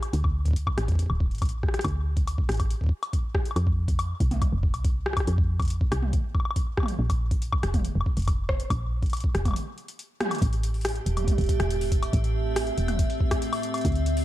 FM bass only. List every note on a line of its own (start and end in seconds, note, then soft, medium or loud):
0.13 0.71 D2 loud
0.78 1.03 A1 medium
1.10 1.33 D1 loud
1.31 1.78 A1 medium
1.85 2.42 D2 loud
2.49 2.75 A1 medium
3.56 4.14 F2 loud
4.20 4.46 C2 medium
4.53 4.75 F1 medium
4.74 5.21 C2 medium
5.28 5.85 F2 loud
5.92 6.17 C2 medium
6.99 7.57 A#1 loud
7.63 7.89 F1 medium
7.95 8.02 F1 loud
8.17 8.64 F1 medium
8.70 9.28 A#1 loud
9.35 9.56 F1 medium
10.42 11.00 A1 loud
11.06 11.32 E1 medium
11.38 11.45 E1 loud
11.60 12.07 E1 medium
12.13 12.71 A1 loud
12.78 13.03 E1 medium
13.85 14.25 D2 loud